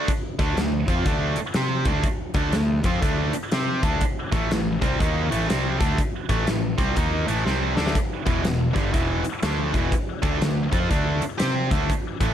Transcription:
0.08 kick, closed hi-hat
0.39 picked electric bass D2, distorted electric guitar D3 A3 D4, kick, closed hi-hat
0.57 picked electric bass D2, distorted electric guitar D3 A3, snare, closed hi-hat
0.88 picked electric bass F2, distorted electric guitar F3 C4 F4, kick, closed hi-hat
1.06 picked electric bass D2, distorted electric guitar D3 A3 D4, kick, closed hi-hat
1.36 muted distorted electric guitar stroke, muted picked electric bass stroke, closed hi-hat
1.54 picked electric bass C3, distorted electric guitar C4 G4 C5, snare, closed hi-hat
1.85 picked electric bass D2, distorted electric guitar D3 A3 D4, kick, closed hi-hat
2.03 kick, closed hi-hat
2.34 picked electric bass D2, distorted electric guitar D3 A3 D4, kick, closed hi-hat
2.52 picked electric bass D2, distorted electric guitar D3 A3, snare, closed hi-hat
2.84 picked electric bass F2, distorted electric guitar F3 C4 F4, kick, closed hi-hat
3.02 picked electric bass D2, distorted electric guitar D3 A3 D4, kick, closed hi-hat
3.33 muted distorted electric guitar stroke, muted picked electric bass stroke, closed hi-hat
3.52 picked electric bass C3, distorted electric guitar C4 G4 C5, snare, closed hi-hat
3.82 picked electric bass D2, distorted electric guitar D3 A3 D4, kick, closed hi-hat
4.01 kick, closed hi-hat
4.32 picked electric bass A1, distorted electric guitar A2 E3 A3, kick, closed hi-hat
4.51 picked electric bass A1, distorted electric guitar A2 E3, snare, closed hi-hat
4.82 picked electric bass C2, distorted electric guitar C3 G3 C4, kick, closed hi-hat
5.00 picked electric bass D#2, distorted electric guitar D#3 A#3 D#4, kick, closed hi-hat
5.30 picked electric bass A1, distorted electric guitar A2 E3 A3, closed hi-hat
5.48 picked electric bass C2, distorted electric guitar C3 G3 C4, snare, closed hi-hat
5.79 picked electric bass D2, distorted electric guitar D3 A3 D4, kick, closed hi-hat
5.98 kick, closed hi-hat
6.29 picked electric bass A1, distorted electric guitar A2 E3 A3, kick, closed hi-hat
6.47 picked electric bass A1, distorted electric guitar A2 E3, snare, closed hi-hat
6.78 picked electric bass C2, distorted electric guitar C3 G3 C4, kick, closed hi-hat
6.96 picked electric bass D#2, distorted electric guitar D#3 A#3 D#4, kick, closed hi-hat
7.27 picked electric bass A1, distorted electric guitar A2 E3 A3, closed hi-hat
7.45 picked electric bass C2, distorted electric guitar C3 G3 C4, snare
7.76 picked electric bass D2, distorted electric guitar D3 A3 D4, snare
7.87 snare
7.95 kick, closed hi-hat
8.26 picked electric bass E1, distorted electric guitar E2 B2 E3, kick, closed hi-hat
8.44 picked electric bass E1, distorted electric guitar E2 B2, snare, closed hi-hat
8.73 picked electric bass G1, distorted electric guitar G2 D3 G3, kick, closed hi-hat
8.92 picked electric bass E1, distorted electric guitar E2 B2 E3, kick, closed hi-hat
9.24 muted distorted electric guitar stroke, muted picked electric bass stroke, closed hi-hat
9.43 picked electric bass D2, distorted electric guitar D3 A3 D4, snare, closed hi-hat
9.73 picked electric bass E1, distorted electric guitar E2 B2 E3, kick, closed hi-hat
9.92 kick, closed hi-hat
10.22 picked electric bass D2, distorted electric guitar D3 A3 D4, kick, closed hi-hat
10.41 picked electric bass D2, distorted electric guitar D3 A3, snare, closed hi-hat
10.71 picked electric bass F2, distorted electric guitar F3 C4 F4, kick, closed hi-hat
10.90 picked electric bass D2, distorted electric guitar D3 A3 D4, kick, closed hi-hat
11.22 muted distorted electric guitar stroke, muted picked electric bass stroke, closed hi-hat
11.38 distorted electric guitar C4 G4 C5, snare, closed hi-hat
11.42 picked electric bass C3
11.71 picked electric bass D2, distorted electric guitar D3 A3 D4, kick, closed hi-hat
11.90 kick, closed hi-hat
12.21 picked electric bass A1, distorted electric guitar A2 E3 A3, kick, closed hi-hat

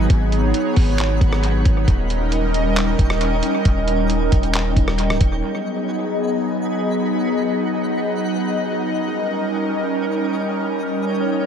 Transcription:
Already playing: analog synth pad F#3 B3 D#4 G#4, synth texture F#4 B4
0.10 808-style bass G#1, analog synth pad C#5, synth texture F#5, kick, closed hi-hat
0.32 closed hi-hat
0.54 closed hi-hat
0.76 808-style bass G#1, kick, open hi-hat
0.99 clap, closed hi-hat
1.21 808-style bass G#1, kick, closed hi-hat
1.33 cross-stick
1.43 closed hi-hat
1.65 808-style bass G#1, kick, closed hi-hat
1.87 808-style bass D#1, analog synth pad G3 C#4 A#4 D#5, synth texture D#4 C#5 G5, kick, closed hi-hat
2.10 closed hi-hat
2.32 closed hi-hat
2.54 closed hi-hat
2.76 clap, closed hi-hat
2.99 808-style bass D#1, kick, closed hi-hat
3.10 cross-stick
3.21 closed hi-hat
3.43 closed hi-hat
3.65 808-style bass D#1, kick, closed hi-hat
3.88 closed hi-hat
4.10 closed hi-hat
4.32 808-style bass D#1, kick, closed hi-hat
4.43 closed hi-hat
4.54 clap, closed hi-hat
4.76 808-style bass D#1, kick, closed hi-hat
4.88 cross-stick
4.98 closed hi-hat
5.10 808-style bass C#1, cross-stick
5.21 808-style bass D#1, kick, closed hi-hat
5.43 analog synth pad F#3 B3 D#4 G#4 D#5, synth texture F#4 B4 G#5
7.21 synth texture F#5
8.99 analog synth pad G3 C#4 A#4, synth texture D#4 C#5 G5
10.76 analog synth pad C#5, synth texture D#5

